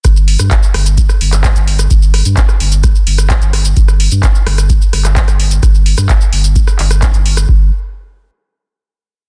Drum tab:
HH |x-oxx-oxx-oxxxox|x-oxx-oxx-oxxxox|x-oxx-oxx-o-xxox|x-oxx-oxx-oxxxo-|
SH |xx-xxx-xxx-xxx-x|xx-xxx-xxx-xxx-x|xx-xxx-xxx-xxx-x|xx-xxx-xxx-xxx-x|
CP |----x------xx---|----x-------x---|----x------xx---|----x-----x-x---|
SD |r--r--r--r-rr--r|--r--r--r--r--r-|-r--r-rr--rr-r--|r--r-----r-rr--r|
BD |o---o---o---o---|o---o---o---o---|o---o---o---o---|o---o---o---o---|

HH |----------------|
SH |----------------|
CP |----------------|
SD |----------------|
BD |o---------------|